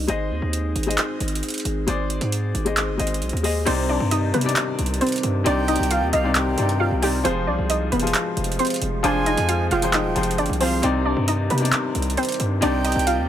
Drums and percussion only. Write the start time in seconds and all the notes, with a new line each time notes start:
0.08 closed hi-hat
0.53 closed hi-hat
0.76 closed hi-hat
0.83 closed hi-hat
0.91 closed hi-hat
0.98 clap, closed hi-hat
1.20 closed hi-hat
1.28 closed hi-hat
1.35 closed hi-hat
1.43 closed hi-hat
1.49 closed hi-hat
1.50 closed hi-hat
1.54 closed hi-hat
1.58 closed hi-hat
1.60 closed hi-hat
1.65 closed hi-hat
1.88 closed hi-hat
2.10 closed hi-hat
2.21 closed hi-hat
2.32 closed hi-hat
2.55 closed hi-hat
2.66 closed hi-hat
2.77 clap, closed hi-hat
3.00 closed hi-hat
3.07 closed hi-hat
3.14 closed hi-hat
3.22 closed hi-hat
3.29 closed hi-hat
3.37 closed hi-hat
3.44 open hi-hat
3.67 closed hi-hat, crash
4.11 closed hi-hat
4.34 closed hi-hat
4.41 closed hi-hat
4.49 closed hi-hat
4.56 clap, closed hi-hat
4.79 closed hi-hat
4.86 closed hi-hat
4.94 closed hi-hat
5.01 closed hi-hat
5.07 closed hi-hat
5.09 closed hi-hat
5.12 closed hi-hat
5.16 closed hi-hat
5.18 closed hi-hat
5.23 closed hi-hat
5.46 closed hi-hat
5.68 closed hi-hat
5.76 closed hi-hat
5.83 closed hi-hat
5.91 closed hi-hat
6.13 closed hi-hat
6.35 clap, closed hi-hat
6.58 closed hi-hat
6.69 closed hi-hat
7.03 open hi-hat
7.25 closed hi-hat
7.70 closed hi-hat
7.92 closed hi-hat
8.00 closed hi-hat
8.07 closed hi-hat
8.14 clap, closed hi-hat
8.37 closed hi-hat
8.44 closed hi-hat
8.52 closed hi-hat
8.59 closed hi-hat
8.65 closed hi-hat
8.67 closed hi-hat
8.70 closed hi-hat
8.74 closed hi-hat
8.76 closed hi-hat
8.82 closed hi-hat
9.04 closed hi-hat
9.26 closed hi-hat
9.38 closed hi-hat
9.49 closed hi-hat
9.71 closed hi-hat
9.82 closed hi-hat
9.93 clap, closed hi-hat
10.16 closed hi-hat
10.23 closed hi-hat
10.31 closed hi-hat
10.38 closed hi-hat
10.46 closed hi-hat
10.53 closed hi-hat
10.61 open hi-hat
10.83 closed hi-hat
11.28 closed hi-hat
11.50 closed hi-hat
11.58 closed hi-hat
11.65 closed hi-hat
11.72 clap, closed hi-hat
11.95 closed hi-hat
12.02 closed hi-hat
12.10 closed hi-hat
12.17 closed hi-hat
12.23 closed hi-hat
12.25 closed hi-hat
12.29 closed hi-hat
12.32 closed hi-hat
12.34 closed hi-hat
12.40 closed hi-hat
12.62 closed hi-hat
12.85 closed hi-hat
12.92 closed hi-hat
12.99 closed hi-hat
13.07 closed hi-hat